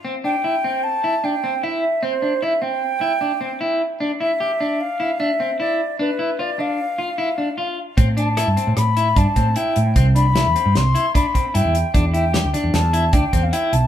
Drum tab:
HH |----------|----------|----------|----------|
SD |----------|----------|----------|----------|
BD |----------|----------|----------|----------|

HH |xxxxxxxxxx|xxxxxxxxxx|xxxxxxxxxx|
SD |--r-r-----|--o-o-----|--ooo-----|
BD |o-----oo--|o-----oo--|o-----oo--|